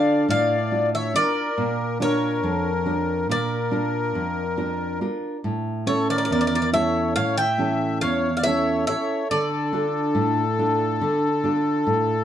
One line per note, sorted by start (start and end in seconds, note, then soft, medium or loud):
0.00 0.26 D3 medium
0.00 0.54 D4 soft
0.00 0.54 F4 soft
0.00 0.54 A4 medium
0.00 0.26 D5 medium
0.00 0.26 F5 medium
0.28 1.12 A2 medium
0.28 0.90 D5 medium
0.28 0.94 F5 medium
0.72 1.13 D4 soft
0.72 1.14 F4 soft
0.95 1.14 C#5 medium
0.95 1.14 E5 medium
1.14 1.49 D4 soft
1.14 1.49 F4 soft
1.14 1.98 A#4 medium
1.14 2.04 D5 medium
1.58 2.41 A#2 medium
2.00 2.69 D4 medium
2.00 2.70 F4 soft
2.00 2.70 A#4 soft
2.00 3.28 A#4 medium
2.00 3.31 C#5 medium
2.43 3.27 F2 medium
2.86 3.55 D4 soft
2.86 3.55 F4 soft
2.86 3.56 A#4 soft
3.29 4.13 A#2 medium
3.29 5.00 A#4 medium
3.29 4.99 D5 medium
3.71 4.41 D4 medium
3.71 4.41 F4 soft
3.71 4.41 A#4 medium
4.15 4.99 F2 medium
4.57 5.00 D4 soft
4.57 5.00 F4 soft
4.57 5.00 A#4 medium
5.01 5.36 D4 soft
5.01 5.36 F4 soft
5.01 5.36 A#4 medium
5.44 6.28 A2 medium
5.86 6.56 C#4 soft
5.86 6.56 E4 soft
5.86 6.08 A4 medium
5.86 6.56 C#5 medium
5.86 6.08 C#5 medium
6.09 6.70 A#4 medium
6.09 6.17 D5 medium
6.18 6.24 D5 medium
6.25 6.31 D5 medium
6.31 7.14 E2 medium
6.31 6.39 D5 medium
6.41 6.46 D5 medium
6.47 6.54 D5 medium
6.55 6.61 D5 medium
6.62 6.69 D5 medium
6.73 7.42 C#4 soft
6.73 7.42 E4 soft
6.73 7.42 A4 medium
6.73 7.14 C#5 medium
6.73 7.14 E5 medium
7.16 7.99 A2 medium
7.16 7.37 C#5 medium
7.16 7.36 F5 medium
7.37 7.98 E5 medium
7.37 8.01 G5 medium
7.58 8.27 E3 soft
7.58 8.27 C#4 soft
7.58 8.28 A4 medium
8.01 8.85 E2 medium
8.01 8.36 C#5 medium
8.01 8.36 F5 medium
8.37 8.45 D5 medium
8.37 8.43 F5 medium
8.43 8.87 C#4 soft
8.43 8.88 E4 soft
8.43 8.88 A4 medium
8.43 8.85 C#5 medium
8.43 8.84 E5 medium
8.87 9.23 C#4 soft
8.87 9.23 E4 soft
8.87 9.23 A4 soft
8.87 9.28 C#5 medium
8.87 9.27 E5 medium
9.31 10.14 D3 medium
9.31 12.24 A4 medium
9.31 12.24 D5 medium
9.73 10.41 D4 soft
9.73 10.42 F4 soft
9.73 10.42 A4 medium
10.15 10.98 A2 medium
10.59 11.27 D4 soft
10.59 11.27 F4 soft
10.59 11.28 A4 medium
11.01 11.84 D3 medium
11.44 12.12 D4 soft
11.44 12.12 F4 soft
11.44 12.13 A4 soft
11.87 12.24 A2 medium